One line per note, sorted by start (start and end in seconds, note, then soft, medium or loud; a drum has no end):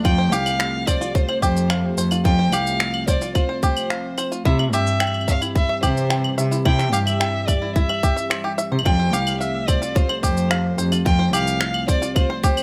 0.05 0.33 F2 medium
0.05 4.41 F3 medium
0.05 4.42 A3 medium
0.05 8.82 C4 medium
0.05 0.17 F4 medium
0.05 2.23 G4 medium
0.05 0.33 G5 loud
0.05 kick loud
0.05 claves medium
0.05 shaker soft
0.18 0.31 C5 medium
0.32 0.43 C2 medium
0.32 0.58 G4 loud
0.32 0.89 F5 loud
0.32 shaker medium
0.46 claves medium
0.46 shaker soft
0.59 0.86 F5 medium
0.59 finger snap medium
0.59 shaker soft
0.87 1.00 C5 medium
0.87 1.16 D5 medium
0.87 kick medium
0.87 claves medium
0.87 shaker medium
1.01 1.14 F4 medium
1.01 shaker soft
1.15 1.27 F4 medium
1.15 1.42 C5 medium
1.15 kick loud
1.15 shaker soft
1.29 1.41 C5 medium
1.29 claves medium
1.42 1.92 F2 medium
1.42 1.69 G4 loud
1.42 1.94 C5 medium
1.42 kick medium
1.42 shaker medium
1.57 shaker soft
1.70 1.96 F5 medium
1.70 finger snap medium
1.70 claves medium
1.70 shaker soft
1.97 2.08 F2 medium
1.97 2.11 C5 medium
1.97 shaker medium
2.11 2.24 F4 medium
2.11 claves medium
2.11 shaker soft
2.25 2.54 F2 medium
2.25 4.43 F4 medium
2.25 2.38 F4 medium
2.25 2.54 G5 loud
2.25 kick medium
2.25 shaker soft
2.39 2.51 C5 medium
2.52 2.63 C2 medium
2.52 2.79 G4 medium
2.52 3.08 F5 loud
2.52 claves medium
2.52 shaker medium
2.67 shaker soft
2.80 3.06 F5 medium
2.80 finger snap medium
2.80 shaker soft
2.94 claves medium
3.08 3.21 C5 loud
3.08 3.34 D5 medium
3.08 kick loud
3.08 shaker medium
3.22 3.34 F4 medium
3.22 shaker soft
3.35 3.47 F4 medium
3.35 3.61 C5 medium
3.35 kick loud
3.35 claves medium
3.35 shaker soft
3.49 3.61 C5 medium
3.63 3.89 G4 medium
3.63 4.14 C5 medium
3.63 kick medium
3.63 shaker medium
3.77 claves medium
3.77 shaker soft
3.90 4.16 F5 medium
3.90 finger snap medium
3.90 shaker soft
4.18 4.31 C5 medium
4.18 claves medium
4.18 shaker medium
4.32 4.44 F4 medium
4.32 shaker soft
4.45 4.74 C3 medium
4.45 8.82 E3 medium
4.45 8.82 G3 medium
4.45 4.58 E4 medium
4.45 8.82 G4 medium
4.45 4.58 E5 medium
4.45 kick loud
4.45 shaker soft
4.59 4.71 E5 medium
4.59 claves medium
4.73 4.83 G2 medium
4.73 4.99 G4 medium
4.73 5.24 E5 loud
4.73 shaker medium
4.87 shaker soft
5.00 5.27 G5 medium
5.00 finger snap medium
5.00 claves medium
5.00 shaker soft
5.07 claves medium
5.14 claves soft
5.21 claves soft
5.28 5.41 E5 medium
5.28 5.41 F5 loud
5.28 kick medium
5.28 shaker medium
5.41 5.54 E4 medium
5.41 claves medium
5.41 shaker soft
5.55 5.68 E4 medium
5.55 5.82 E5 loud
5.55 kick loud
5.55 shaker soft
5.69 5.82 E5 medium
5.83 6.33 C3 medium
5.83 6.09 G4 loud
5.83 6.34 C5 medium
5.83 kick medium
5.83 claves medium
5.83 shaker medium
5.97 shaker soft
6.10 6.36 G5 medium
6.10 finger snap medium
6.10 shaker soft
6.24 claves medium
6.38 6.48 C3 medium
6.38 6.51 E5 loud
6.38 shaker medium
6.51 6.64 E4 medium
6.51 shaker soft
6.65 6.94 C3 medium
6.65 6.78 E4 medium
6.65 6.92 G5 loud
6.65 kick loud
6.65 claves medium
6.79 6.91 E5 medium
6.79 finger snap soft
6.79 shaker soft
6.93 7.03 G2 medium
6.93 7.19 G4 loud
6.93 6.99 F5 loud
6.93 shaker medium
7.06 7.49 E5 loud
7.06 claves medium
7.06 shaker soft
7.20 7.47 G5 medium
7.20 finger snap medium
7.20 shaker soft
7.47 7.75 D5 medium
7.47 7.61 E5 medium
7.47 kick medium
7.47 claves medium
7.47 shaker medium
7.62 7.74 E4 medium
7.75 7.88 E4 medium
7.75 8.54 E5 medium
7.75 kick loud
7.75 shaker soft
7.89 8.02 E5 medium
7.89 claves medium
8.03 8.16 G4 medium
8.03 kick loud
8.03 shaker medium
8.16 8.24 E5 medium
8.16 shaker soft
8.30 8.43 C5 medium
8.30 finger snap medium
8.30 claves medium
8.30 shaker soft
8.44 8.52 G4 medium
8.58 8.70 E5 medium
8.58 shaker medium
8.72 8.82 C3 medium
8.72 8.84 C5 medium
8.79 claves medium
8.85 9.15 F2 medium
8.85 12.63 F3 medium
8.85 12.63 A3 medium
8.85 12.63 C4 medium
8.85 8.98 F4 medium
8.85 12.63 G4 medium
8.85 9.15 G5 loud
8.85 kick loud
8.85 claves medium
8.85 shaker soft
8.99 9.12 C5 medium
9.13 9.24 C2 medium
9.13 9.39 G4 loud
9.13 9.40 F5 loud
9.13 shaker medium
9.27 claves medium
9.27 shaker soft
9.41 9.69 E5 medium
9.41 9.67 F5 medium
9.41 shaker soft
9.68 9.81 C5 loud
9.68 9.97 D5 medium
9.68 kick loud
9.68 claves medium
9.68 shaker medium
9.82 9.94 F4 medium
9.82 shaker soft
9.95 10.08 F4 medium
9.95 10.21 C5 medium
9.95 kick loud
9.95 shaker soft
10.09 10.22 C5 medium
10.09 claves medium
10.22 10.73 F2 medium
10.22 10.49 G4 medium
10.22 10.74 C5 medium
10.22 kick medium
10.22 shaker medium
10.37 shaker soft
10.51 10.77 F5 medium
10.51 finger snap medium
10.51 claves medium
10.51 shaker soft
10.78 10.89 F2 medium
10.78 10.91 C5 medium
10.78 shaker medium
10.92 11.04 F4 medium
10.92 claves medium
10.92 shaker soft
11.05 11.35 F2 medium
11.05 11.18 F4 medium
11.05 11.31 G5 loud
11.05 kick loud
11.05 shaker soft
11.19 11.32 C5 medium
11.33 11.44 C2 medium
11.33 11.59 G4 loud
11.33 11.85 F5 loud
11.33 claves medium
11.33 shaker medium
11.47 shaker soft
11.61 11.87 F5 medium
11.61 finger snap medium
11.61 shaker soft
11.74 claves medium
11.88 12.01 C5 medium
11.88 12.14 D5 loud
11.88 kick loud
11.88 shaker medium
12.02 12.14 F4 medium
12.02 shaker soft
12.16 12.28 F4 medium
12.16 12.42 C5 medium
12.16 kick loud
12.16 claves medium
12.16 shaker soft
12.30 12.42 C5 medium
12.44 12.63 G4 loud
12.44 12.63 C5 medium
12.44 kick loud
12.44 shaker medium
12.57 claves medium
12.57 shaker soft